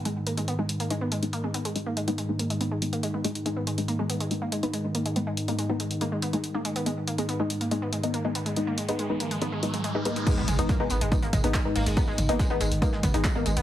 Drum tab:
CC |----------------|----------------|----------------|----------------|
HH |x-xxx-xxx-xxx-xx|x-xxx-xxx-xxx-xx|x-xxx-xxx-xxx-xx|x-xxx-xxx-xxx-xx|
TB |----------------|----------------|----------------|----------------|
CP |----------------|----------------|----------------|----------------|
SD |----------------|----------------|----------------|----------------|
T2 |----------------|----------------|----------------|----------------|
BD |----------------|----------------|----------------|----------------|

CC |----------------|----------------|x---------------|----------------|
HH |x-xxx-xxx-xxx-xx|x-xxx-xxx-xxx-xx|x-oxx-oxxxoxx-ox|x-oxx-oxx-oxx-ox|
TB |----------------|----------------|x-x-x-x-x-x-x---|x-x-x-x-x-x-x-x-|
CP |----------------|----------------|------------x---|------------x---|
SD |----------------|----------------|----o-------o--o|----o----oooo---|
T2 |----------------|----------------|--o-------o-----|--o-------o-----|
BD |----------------|----------------|o---o---o-o-o---|o---o---o-o-o---|